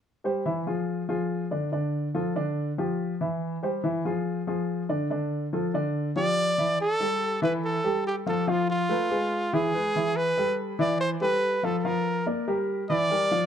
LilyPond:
<<
  \new Staff \with { instrumentName = "Trumpet" } { \time 4/4 \key e \phrygian \tempo 4 = 142 r1 | r1 | r1 | r2 r8 d''4. |
a'4. b'8 a'4 g'8 a'8 | f'8 f'2 gis'4. | b'4 r8 d''8 c''8 b'8~ \tuplet 3/2 { b'8. a'8 a'16 } | bes'4 r4. d''4. | }
  \new Staff \with { instrumentName = "Grand piano" } { \time 4/4 \key e \phrygian r8 <g g' c''>8 <e e' e''>8 <f f' aes'>4 <f f' aes'>4 <d d' d''>8 | <d d' d''>4 <f f' a'>8 <d d' d''>4 <f f' g'>4 <e e' e''>8~ | <e e' e''>8 <g g' c''>8 <e e' e''>8 <f f' aes'>4 <f f' aes'>4 <d d' d''>8 | <d d' d''>4 <f f' a'>8 <d d' d''>4 <f f' g'>4 <e e' e''>8 |
r8 <g g' a'>4 <e e' e''>4 <g g' a'>4 <f f' f''>8 | <f f' f''>4 <a a' ces''>8 <aes aes' ces''>4 <e e' e''>8 <gis gis' b'>8 <e e' e''>8~ | <e e' e''>8 <g g' a'>4 <e e' e''>4 <g g' a'>4 <f f' f''>8 | <f f' f''>4 <bes bes' d''>8 <g g' bes'>4 <e e' e''>8 <g g' bes'>8 <f f' f''>8 | }
>>